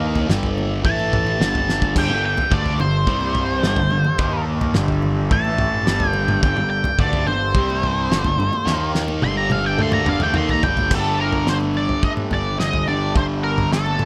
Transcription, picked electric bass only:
Already playing: D#2
0.29 G1
0.85 A1
1.40 G1
1.96 G1
2.10 G1
2.52 D2
2.80 G1
3.07 C2
3.64 G1
3.78 G1
3.92 G1
4.06 muted picked electric bass stroke
4.19 D#2
4.76 G1
5.31 A1
5.87 G1
6.43 G1
6.58 G1
6.99 D2
7.26 G1
7.55 C2
8.11 G1
8.25 G1
8.39 G1
8.53 muted picked electric bass stroke
8.67 D#2
9.23 G1
9.80 D2
10.08 G1
10.22 D2
10.37 D#2
10.64 G1
10.91 G1
12.32 G1
12.59 G1
12.88 G1
13.16 G1

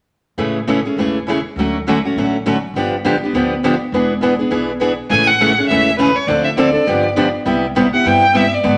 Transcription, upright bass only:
0.38 A1
0.96 E1
1.56 D2
2.16 A1
2.74 G1
3.33 D2
3.92 E1
4.51 B1
5.10 A1
5.69 E1
6.27 D2
6.87 G1
7.46 C2
8.06 G2
8.64 G#1

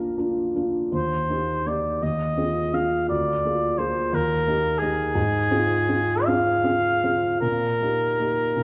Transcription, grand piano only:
Already playing: A#1 A#3 D4 F4
0.17 A#3 D4 F4
0.55 A#3 D4 F4
0.92 D#2
1.30 A#3 D#4 G4
1.66 A#3 D#4 G4
2.02 D#2
2.37 C4 F4 G#4
2.73 C4 F4 G#4
3.09 D2
3.45 A#3 F4 G#4
3.78 A#3 F4 G#4
4.13 D#2
4.48 A#3 D#4 G4
4.82 A#3 D#4 G4
5.15 G#2
5.51 C4 F4 G#4
5.89 C4 F4 G#4
6.28 C4 F4 G#4
6.64 C4 F4 G#4
7.04 C4 F4 G#4
7.42 A#2
7.82 A#3 D#4 G4
8.20 A#3 D#4 G4
8.56 A#2

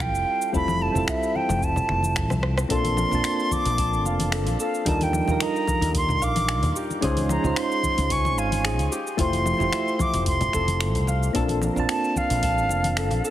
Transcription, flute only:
0.01 G5
0.55 B5
0.82 A5
1.09 E5
1.36 G5
1.64 A5
2.71 C6
3.52 D6
4.61 F5
4.88 A5
5.03 G5
5.43 A#5
5.97 C6
6.24 D6
7.31 A#5
7.58 C6
8.12 C#6
8.39 G#5
9.21 C6
10.01 D6
10.28 C6
11.90 A5
12.17 F5

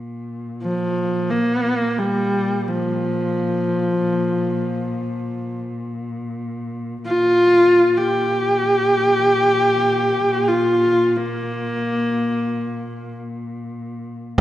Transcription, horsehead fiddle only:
0.62 F3
1.30 A#3
1.99 G3
2.67 F3
7.05 F4
7.97 G4
10.48 F4
11.16 A#3

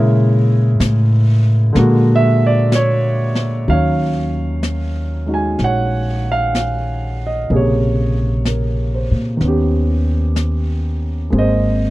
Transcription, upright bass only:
Already playing: A#2
0.80 A2
1.75 A#2
3.68 D#2
5.59 A#1
7.50 A#1
9.11 A#2
9.41 D#2
11.32 G#1

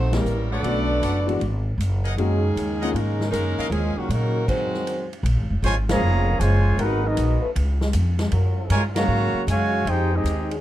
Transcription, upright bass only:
Already playing: A#1
0.24 A1
0.63 B1
1.01 F#1
1.40 G#1
1.78 F#1
2.16 F#2
2.55 D#2
2.94 G#2
3.32 F#2
3.58 muted upright bass stroke
3.70 D#2
3.96 muted upright bass stroke
4.09 A#2
5.23 A#1
5.37 G#1
5.50 F1
5.62 G#1
6.01 F1
6.40 F#1
6.77 G#1
7.17 A#1
7.56 C#2
7.94 F2
8.32 F#2
8.70 G2
9.08 G#2
9.34 muted upright bass stroke
9.47 F#2
9.85 F2
10.24 D#2

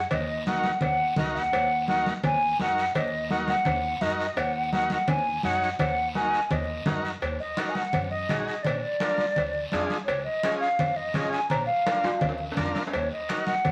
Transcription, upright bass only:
0.11 D#2
0.82 D#2
1.17 C#2
1.35 D#2
1.52 D#2
2.23 D#2
2.59 F#2
2.95 D#2
3.66 D#2
4.01 F#2
4.36 D#2
5.08 D#2
5.44 F#2
5.79 D#2
6.50 D#2
6.86 F#2
7.22 D#2
7.94 F#2
8.30 A#1
8.65 A#1
9.37 D2
9.73 F2
10.08 C#2
10.79 F2
11.15 G#1
11.50 A#1
12.22 D2
12.58 F2
12.94 D#2
13.65 F#2

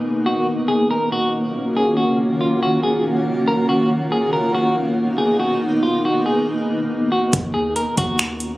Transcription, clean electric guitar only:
0.26 F#4
0.68 G#4
0.91 A#4
1.12 F#4
1.77 G#4
1.97 F#4
2.41 F4
2.63 F#4
2.83 G#4
3.48 A#4
3.69 F#4
4.12 G#4
4.33 A#4
4.55 F#4
5.18 G#4
5.40 F#4
5.83 F4
6.05 F#4
6.26 G#4
7.12 F#4
7.54 G#4
7.76 A#4
7.98 F#4

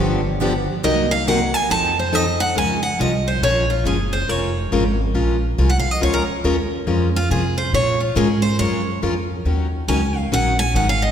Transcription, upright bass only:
Already playing: G1
0.84 C2
1.70 F2
2.55 C#2
2.99 C2
3.41 A#1
3.84 F#1
4.29 F1
4.72 G#1
5.14 A#1
5.58 C2
5.85 muted upright bass stroke
6.01 C#2
6.28 muted upright bass stroke
6.44 D#2
6.87 F2
7.30 C3
7.73 A#2
8.16 G#2
8.59 F#2
9.02 F2
9.45 D#2
9.88 C#2
10.32 A#1
10.74 G#1

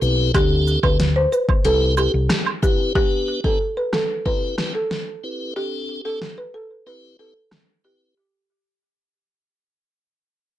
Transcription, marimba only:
0.35 G4
0.84 B4
1.16 C5
1.32 B4
1.65 A4
1.98 G4
2.63 G4
2.95 G4
3.45 A4
3.77 B4
3.93 A4
4.26 B4
4.75 A4
5.56 G4
6.05 A4
6.38 B4
6.54 A4
6.87 B4
7.19 A4
7.85 G4

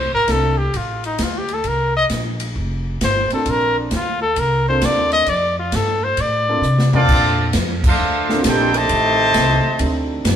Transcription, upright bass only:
Already playing: C2
0.13 A1
0.28 C2
0.74 A1
1.19 D2
1.64 C2
2.10 A#1
2.55 F1
3.01 G1
3.31 muted upright bass stroke
3.46 A#1
3.91 D2
4.37 C2
4.82 D#2
5.27 F2
5.72 G2
6.18 A2
6.62 C3
7.09 A#2
7.54 F2
7.98 D2
8.45 A#1
8.90 A1
9.35 C2
9.80 D2
10.24 F#2

